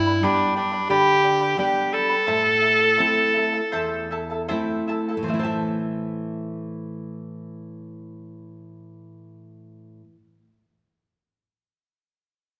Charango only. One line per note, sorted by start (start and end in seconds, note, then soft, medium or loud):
0.07 0.22 B4 soft
0.07 0.23 D5 medium
0.07 0.23 B5 medium
0.23 0.56 G4 medium
0.23 0.55 B4 medium
0.23 0.55 D5 medium
0.23 0.55 G5 medium
0.23 0.56 B5 loud
0.56 0.72 B4 medium
0.56 0.71 D5 medium
0.56 0.73 G5 medium
0.56 0.70 B5 medium
0.72 0.89 B4 soft
0.72 0.89 D5 soft
0.72 0.89 B5 medium
0.89 1.23 G4 medium
0.89 1.23 B4 medium
0.89 1.23 D5 loud
0.89 1.22 G5 medium
0.89 1.23 B5 loud
1.24 1.41 B4 medium
1.24 1.40 D5 medium
1.24 1.41 G5 medium
1.24 1.39 B5 medium
1.40 1.57 B4 medium
1.40 1.57 D5 soft
1.40 1.58 B5 medium
1.57 1.92 G4 loud
1.57 1.92 B4 medium
1.57 1.92 D5 loud
1.57 1.91 G5 medium
1.57 1.92 B5 medium
1.92 2.10 B4 medium
1.92 2.09 D5 medium
1.92 2.10 G5 medium
1.92 2.08 B5 medium
2.09 2.27 B4 medium
2.09 2.27 D5 medium
2.09 2.27 B5 medium
2.27 2.61 E4 medium
2.27 2.62 A4 medium
2.27 2.63 C5 medium
2.27 2.61 E5 medium
2.27 2.62 A5 medium
2.62 2.80 E4 medium
2.62 2.79 A4 medium
2.62 2.81 E5 medium
2.62 2.79 A5 medium
2.80 2.97 E4 medium
2.80 2.97 A4 medium
2.80 2.97 A5 medium
2.97 3.34 E4 medium
2.97 3.35 A4 loud
2.97 3.35 C5 medium
2.97 3.33 E5 medium
2.97 3.35 A5 loud
3.35 3.53 E4 medium
3.35 3.52 A4 medium
3.35 3.54 E5 medium
3.35 3.52 A5 medium
3.53 3.71 E4 medium
3.53 3.72 A4 medium
3.53 3.72 A5 medium
3.72 4.10 E4 loud
3.72 4.10 A4 loud
3.72 4.11 C5 medium
3.72 4.10 E5 loud
3.72 4.11 A5 loud
4.11 4.30 E4 medium
4.11 4.30 A4 medium
4.11 4.31 E5 medium
4.11 4.29 A5 medium
4.30 4.48 E4 soft
4.30 4.47 A4 medium
4.30 4.48 A5 medium
4.48 4.87 E4 loud
4.48 4.88 A4 loud
4.48 4.89 C5 loud
4.48 4.86 E5 loud
4.48 4.88 A5 loud
4.88 5.10 E4 medium
4.88 5.08 A4 medium
4.88 5.09 E5 medium
4.88 5.07 A5 medium
5.09 5.31 E4 medium
5.09 5.31 A4 medium
5.09 5.29 A5 medium
5.24 10.08 C5 medium
5.30 10.11 E5 medium
5.35 10.14 E4 medium
5.39 10.16 A4 medium
5.43 10.18 A5 medium